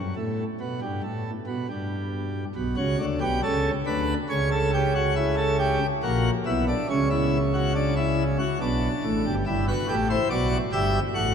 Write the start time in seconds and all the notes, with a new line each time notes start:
Already playing: F#2
0.16 A2
0.60 B2
0.82 G2
1.03 A2
1.47 B2
1.69 G2
2.55 B1 B2
2.77 C#2 C#3 F#4
2.99 D2 D3
3.21 B1 B2 G4
3.43 C#2 C#3 A4
3.86 D2 D3 B4
4.29 C#2 C#3 C#5
4.52 A4
4.74 G4
4.95 F#4
5.16 E4
5.37 A4
5.59 G4
6.03 A#1 A#2 F#4
6.46 B1 B2 E4
6.68 D4
6.90 C#2 C#3 C#4
7.10 E4
7.54 F#4
7.75 D4
7.96 E4
8.39 F#4
8.61 B1 B2 D4
9.04 A1 A2
9.26 G1 G2
9.46 G1 G2 E4
9.68 F#4 B4
9.89 A1 A2 G4
10.10 E4 C5
10.30 B1 B2 F#4 D5
10.72 G1 G2 G4 E5
11.15 A1 A2 F#4 F#5